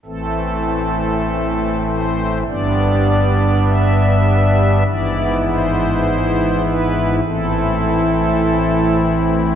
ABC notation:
X:1
M:4/4
L:1/8
Q:1/4=50
K:Am
V:1 name="Pipe organ"
A3 c d2 e2 | d c2 B A3 z |]
V:2 name="Pipe organ" clef=bass
[A,,,A,,E,A,C]4 [G,,,G,,G,B,D]4 | [^G,,,^G,,E,B,E]4 [A,,,A,,E,CE]4 |]